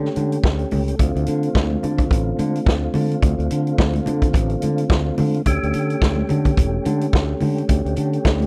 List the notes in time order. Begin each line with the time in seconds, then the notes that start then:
Already playing: A3 C#4 G4
0.05 snare
0.16 D3, closed hi-hat, muted conga, high conga
0.32 closed hi-hat
0.44 D2, kick, snare, muted conga
0.59 closed hi-hat
0.71 C#2, open hi-hat, muted conga, high conga, low conga
0.88 closed hi-hat
0.99 D2 D3 C4 F4, kick, closed hi-hat, muted conga
1.16 D2, closed hi-hat
1.26 D3, closed hi-hat, muted conga
1.43 closed hi-hat
1.55 D2, kick, snare, muted conga
1.70 high conga
1.83 D3, closed hi-hat, low conga
1.98 kick, closed hi-hat, low conga
2.11 A1, kick, closed hi-hat, muted conga
2.39 D3, closed hi-hat, muted conga, high conga
2.56 closed hi-hat
2.66 D2, kick, snare
2.94 D3, open hi-hat, muted conga, high conga, low conga
3.12 closed hi-hat
3.23 D2, kick, closed hi-hat, muted conga
3.39 D2, closed hi-hat
3.51 D3, closed hi-hat
3.67 closed hi-hat
3.78 D2, kick, snare, muted conga
3.94 closed hi-hat, high conga
4.06 D3, closed hi-hat, muted conga, low conga
4.22 kick, closed hi-hat, low conga
4.33 A1, kick, closed hi-hat, muted conga
4.50 closed hi-hat
4.62 D3, closed hi-hat, high conga
4.78 closed hi-hat
4.90 D2, kick, snare
5.18 D3, open hi-hat, muted conga, high conga, low conga
5.34 closed hi-hat
5.46 D2 A3 C#4 G4, kick, closed hi-hat, muted conga
5.63 D2, closed hi-hat
5.73 D3, closed hi-hat, muted conga
5.90 closed hi-hat
6.02 D2, kick, snare, muted conga
6.16 high conga
6.29 D3, closed hi-hat, low conga
6.45 kick, closed hi-hat, low conga
6.57 E1, kick, closed hi-hat
6.85 D3, closed hi-hat, muted conga, high conga
7.01 closed hi-hat
7.13 D2, kick, snare, muted conga
7.41 D3, open hi-hat, muted conga, high conga, low conga
7.58 closed hi-hat
7.69 D2, kick, closed hi-hat
7.85 D2, closed hi-hat
7.96 D3, closed hi-hat, muted conga
8.13 closed hi-hat
8.25 D2, kick, snare, muted conga
8.40 closed hi-hat, high conga